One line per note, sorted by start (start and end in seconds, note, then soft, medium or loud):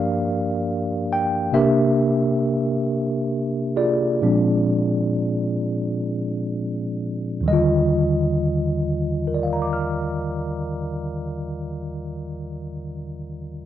0.00 1.50 G2 soft
0.00 1.52 F3 soft
0.00 1.52 A#3 soft
0.00 1.53 D4 soft
0.00 1.54 G4 soft
0.00 1.50 A#4 medium
0.00 1.50 D5 medium
0.00 1.18 F5 medium
1.13 1.55 G5 medium
1.52 4.22 C3 soft
1.52 4.23 A#3 soft
1.52 4.22 D4 soft
1.52 4.19 G4 medium
1.52 4.19 A#4 soft
1.52 3.81 E5 medium
3.76 6.83 F4 soft
3.76 6.83 G#4 soft
3.76 6.83 D5 medium
4.22 7.45 A#2 soft
4.22 7.46 F3 soft
4.22 7.46 G#3 soft
4.22 7.46 C4 soft
4.22 7.46 D4 soft
7.41 10.81 D#2 soft
7.41 10.83 D#3 soft
7.46 10.89 D3 soft
7.46 10.86 G3 soft
7.46 10.84 D#5 medium
7.53 10.93 F4 medium
9.27 12.63 A#4 soft
9.34 12.70 D5 soft
9.43 12.79 F5 soft
9.53 12.89 A#5 soft
9.62 12.98 D6 soft
9.73 13.09 F6 soft